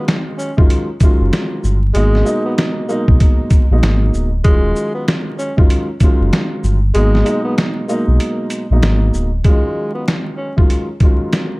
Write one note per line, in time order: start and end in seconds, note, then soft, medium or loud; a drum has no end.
0.00 0.48 D#3 loud
0.00 0.48 F#3 medium
0.00 0.48 G#3 medium
0.00 0.48 C#4 medium
0.00 0.49 F4 loud
0.08 snare loud
0.08 closed hi-hat medium
0.38 0.55 C#4 medium
0.38 shaker medium
0.57 0.69 F#1 medium
0.57 0.85 D#3 loud
0.57 0.86 F#3 medium
0.57 0.86 G#3 medium
0.57 0.86 C#4 medium
0.57 0.86 F4 loud
0.57 kick loud
0.70 closed hi-hat medium
1.00 1.76 D#3 medium
1.00 1.76 F#3 medium
1.00 1.76 G#3 medium
1.00 1.76 C#4 medium
1.00 1.76 F4 loud
1.00 kick medium
1.00 closed hi-hat medium
1.00 shaker medium
1.20 1.31 F#1 medium
1.33 snare loud
1.33 closed hi-hat medium
1.64 1.92 G1 loud
1.64 shaker medium
1.94 2.23 G#1 loud
1.94 2.23 B2 loud
1.94 2.23 F#3 medium
1.94 2.42 G#3 loud
1.94 2.23 G#3 medium
1.94 2.24 A#3 medium
1.94 2.24 D#4 loud
1.94 closed hi-hat medium
2.15 snare soft
2.24 2.84 B2 loud
2.24 2.84 F#3 medium
2.24 2.84 G#3 medium
2.24 2.84 A#3 medium
2.24 2.84 D#4 loud
2.24 shaker medium
2.45 2.56 B3 medium
2.58 snare loud
2.58 closed hi-hat medium
2.88 3.62 B2 loud
2.88 3.62 F#3 medium
2.88 3.63 G#3 medium
2.88 3.06 A#3 medium
2.88 3.63 A#3 medium
2.88 3.63 D#4 loud
2.88 shaker medium
3.08 3.19 B1 medium
3.08 kick medium
3.20 kick loud
3.20 closed hi-hat loud
3.50 kick medium
3.50 closed hi-hat medium
3.50 shaker medium
3.70 3.81 A#1 medium
3.70 4.27 B2 medium
3.70 4.27 F#3 medium
3.70 4.27 G#3 medium
3.70 4.27 A#3 medium
3.70 4.28 D#4 loud
3.83 4.11 G#1 medium
3.83 snare loud
3.83 closed hi-hat medium
4.14 4.42 D1 loud
4.14 shaker medium
4.44 4.73 D#1 loud
4.44 5.48 D#3 medium
4.44 5.48 F#3 medium
4.44 4.92 G#3 loud
4.44 5.48 G#3 medium
4.44 5.48 C#4 medium
4.44 5.49 F4 loud
4.44 kick loud
4.44 closed hi-hat medium
4.76 shaker medium
4.95 5.06 B3 medium
5.08 snare loud
5.08 closed hi-hat medium
5.38 5.56 C#4 medium
5.38 shaker medium
5.57 5.69 F#1 medium
5.57 5.85 D#3 loud
5.57 5.86 F#3 medium
5.57 5.86 G#3 medium
5.57 5.86 C#4 medium
5.57 5.86 F4 loud
5.57 kick loud
5.70 closed hi-hat loud
6.00 6.76 D#3 loud
6.00 6.76 F#3 medium
6.00 6.76 G#3 loud
6.00 6.76 C#4 medium
6.00 6.76 F4 loud
6.00 kick medium
6.00 closed hi-hat medium
6.00 shaker medium
6.20 6.31 F#1 medium
6.33 snare loud
6.33 closed hi-hat medium
6.64 6.92 G1 medium
6.64 shaker medium
6.94 7.23 G#1 loud
6.94 7.23 B2 loud
6.94 7.23 F#3 medium
6.94 7.42 G#3 loud
6.94 7.23 G#3 medium
6.94 7.24 A#3 medium
6.94 7.24 D#4 loud
6.94 closed hi-hat medium
7.15 snare soft
7.24 7.84 B2 loud
7.24 7.84 F#3 medium
7.24 7.84 G#3 medium
7.24 7.84 A#3 medium
7.24 7.84 D#4 loud
7.24 closed hi-hat medium
7.24 shaker medium
7.45 7.56 B3 medium
7.58 snare loud
7.58 closed hi-hat medium
7.88 8.62 B2 medium
7.88 8.62 F#3 loud
7.88 8.63 G#3 medium
7.88 8.06 A#3 medium
7.88 8.63 A#3 medium
7.88 8.63 D#4 loud
7.88 shaker medium
8.08 8.19 B1 medium
8.20 closed hi-hat loud
8.50 closed hi-hat medium
8.50 shaker medium
8.70 8.81 A#1 medium
8.70 9.27 B2 medium
8.70 9.27 F#3 medium
8.70 9.27 G#3 medium
8.70 9.27 A#3 medium
8.70 9.28 D#4 loud
8.82 9.11 G#1 loud
8.82 snare loud
8.82 closed hi-hat medium
9.14 9.42 D1 loud
9.14 shaker medium
9.44 10.48 D#3 medium
9.44 10.48 F#3 medium
9.44 9.92 G#3 loud
9.44 10.48 G#3 medium
9.44 10.48 C#4 medium
9.44 10.48 F4 loud
9.44 kick loud
9.44 closed hi-hat medium
9.94 10.06 B3 medium
10.08 snare loud
10.08 closed hi-hat medium
10.37 10.55 C#4 medium
10.56 10.85 D#3 medium
10.56 10.85 F#3 medium
10.56 10.85 G#3 medium
10.56 10.86 C#4 medium
10.56 10.86 F4 loud
10.56 kick medium
10.70 closed hi-hat medium
11.00 11.60 D#3 medium
11.00 11.60 F#3 medium
11.00 11.60 G#3 medium
11.00 11.60 C#4 medium
11.00 11.60 F4 loud
11.00 kick medium
11.00 closed hi-hat medium
11.33 snare loud
11.33 closed hi-hat medium